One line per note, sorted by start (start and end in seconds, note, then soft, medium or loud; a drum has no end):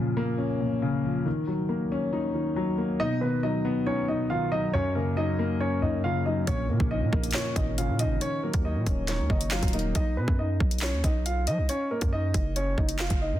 0.00 0.59 A#2 medium
0.00 0.81 C#3 medium
0.00 1.02 F3 medium
0.17 1.26 A#3 loud
0.38 1.25 C#4 medium
0.60 1.26 A#2 medium
0.82 1.26 C#3 loud
1.04 1.26 F3 medium
1.26 2.33 D#3 medium
1.47 2.55 F#3 medium
1.69 2.76 A#3 medium
1.92 3.00 C#4 loud
2.13 3.00 D#4 medium
2.34 3.00 D#3 medium
2.56 3.00 F#3 medium
2.78 3.00 A#3 medium
3.00 4.07 B2 medium
3.00 3.18 D#4 medium
3.00 3.18 D#5 loud
3.21 4.29 D#3 medium
3.21 3.40 B3 medium
3.21 3.39 B4 medium
3.43 4.51 F#3 medium
3.43 3.84 D#4 medium
3.43 3.84 D#5 medium
3.65 4.74 B3 medium
3.86 4.05 C#4 medium
3.86 4.73 D#4 medium
3.86 4.05 C#5 medium
4.08 4.73 B2 medium
4.08 4.27 D#4 medium
4.08 4.26 D#5 medium
4.30 4.74 D#3 medium
4.30 4.49 F4 medium
4.30 4.48 F5 medium
4.52 4.74 F#3 medium
4.52 4.70 D#4 medium
4.52 4.70 D#5 loud
4.73 5.80 F#2 medium
4.73 4.92 C#4 medium
4.73 4.92 C#5 loud
4.95 6.03 C#3 medium
4.95 5.14 A#3 medium
4.95 5.13 A#4 medium
5.16 6.25 F#3 medium
5.16 5.58 D#4 medium
5.16 5.58 D#5 medium
5.39 6.48 A#3 loud
5.60 6.47 C#4 medium
5.60 5.79 C#4 medium
5.60 5.79 C#5 medium
5.82 6.47 F#2 medium
5.82 6.01 D#4 medium
5.82 6.00 D#5 medium
6.04 6.48 C#3 medium
6.04 6.23 F4 medium
6.04 6.22 F5 medium
6.26 6.48 F#3 medium
6.26 6.44 D#4 medium
6.26 6.44 D#5 medium
6.47 6.71 A#1 loud
6.47 7.55 A#2 loud
6.47 6.66 C#4 medium
6.47 6.66 C#5 loud
6.47 kick loud
6.47 closed hi-hat medium
6.69 6.79 A#2 loud
6.69 7.77 C#3 medium
6.69 6.88 A#3 medium
6.69 6.87 A#4 medium
6.80 7.03 A#1 loud
6.80 kick loud
6.91 7.98 F3 medium
6.91 7.32 D#4 medium
6.91 7.32 D#5 medium
7.02 7.12 A#2 loud
7.12 7.34 A#1 loud
7.12 8.21 A#3 loud
7.12 kick loud
7.24 closed hi-hat medium
7.31 8.21 C#4 medium
7.31 7.52 C#5 medium
7.31 snare loud
7.31 clap medium
7.31 closed hi-hat medium
7.35 7.53 C#4 medium
7.35 closed hi-hat medium
7.56 7.90 G#1 loud
7.56 8.21 A#2 medium
7.56 7.75 D#4 medium
7.56 7.74 D#5 medium
7.56 kick medium
7.56 closed hi-hat medium
7.78 8.21 C#3 medium
7.78 7.96 F4 medium
7.78 7.96 F5 medium
7.78 closed hi-hat medium
7.89 8.06 A#2 medium
7.99 8.21 F3 medium
7.99 8.18 D#4 medium
7.99 8.18 D#5 medium
7.99 closed hi-hat medium
8.05 8.20 G#1 loud
8.21 9.28 D#3 medium
8.21 8.40 C#4 medium
8.21 8.39 C#5 loud
8.21 closed hi-hat medium
8.43 9.50 F#3 medium
8.43 8.62 A#3 medium
8.43 8.61 A#4 medium
8.54 8.77 D#2 loud
8.54 kick loud
8.54 closed hi-hat medium
8.65 9.72 A#3 medium
8.65 9.06 D#4 medium
8.65 9.06 D#5 medium
8.76 8.86 A#2 loud
8.87 9.21 D#1 loud
8.87 9.96 C#4 medium
8.87 kick loud
8.87 closed hi-hat medium
9.08 9.27 C#4 medium
9.08 9.95 D#4 medium
9.08 9.26 C#5 medium
9.08 snare medium
9.08 closed hi-hat medium
9.19 9.29 D#2 loud
9.30 9.61 F#1 loud
9.30 9.95 D#3 medium
9.30 9.49 D#4 medium
9.30 9.48 D#5 medium
9.30 kick medium
9.41 closed hi-hat medium
9.51 9.95 F#3 medium
9.51 9.70 F4 medium
9.51 9.70 F5 medium
9.51 snare loud
9.51 clap medium
9.63 9.94 D#1 loud
9.63 kick loud
9.63 closed hi-hat medium
9.68 closed hi-hat medium
9.73 9.95 A#3 medium
9.73 9.92 D#4 medium
9.73 9.92 D#5 medium
9.73 closed hi-hat medium
9.73 open hi-hat medium
9.79 closed hi-hat soft
9.95 10.19 B1 loud
9.95 10.14 D#4 medium
9.95 10.14 D#5 loud
9.95 kick loud
9.95 closed hi-hat medium
10.17 10.27 B2 loud
10.17 10.36 B3 medium
10.17 10.35 B4 medium
10.28 10.59 F#2 loud
10.28 kick loud
10.39 10.80 D#4 medium
10.39 10.80 D#5 medium
10.60 10.94 B1 loud
10.60 kick loud
10.71 closed hi-hat medium
10.78 11.00 C#5 medium
10.78 snare loud
10.78 clap medium
10.78 closed hi-hat medium
10.83 11.01 C#4 medium
10.83 closed hi-hat medium
10.93 11.03 D#2 loud
11.04 11.49 B1 loud
11.04 11.23 D#4 medium
11.04 11.22 D#5 medium
11.04 kick medium
11.04 closed hi-hat medium
11.26 11.44 F4 medium
11.26 11.44 F5 medium
11.26 closed hi-hat medium
11.47 11.60 F#3 loud
11.47 11.66 D#4 medium
11.47 11.66 D#5 loud
11.47 closed hi-hat medium
11.58 11.69 B1 loud
11.69 11.88 C#4 medium
11.69 11.87 C#5 loud
11.69 closed hi-hat medium
11.91 12.09 A#3 medium
11.91 12.09 A#4 medium
12.01 12.33 F#2 loud
12.01 kick loud
12.01 closed hi-hat medium
12.13 12.54 D#4 medium
12.13 12.53 D#5 loud
12.34 12.76 F#1 loud
12.34 kick loud
12.34 closed hi-hat medium
12.56 12.75 C#4 medium
12.56 12.74 C#5 medium
12.56 closed hi-hat medium
12.78 13.01 F#1 loud
12.78 kick medium
12.89 closed hi-hat medium
12.99 13.10 F1 loud
12.99 13.18 F4 medium
12.99 13.18 F5 medium
12.99 snare loud
12.99 clap medium
13.10 13.34 F#1 loud
13.10 kick medium
13.10 closed hi-hat medium
13.21 13.40 D#4 medium
13.21 13.39 D#5 medium
13.32 13.40 A#2 loud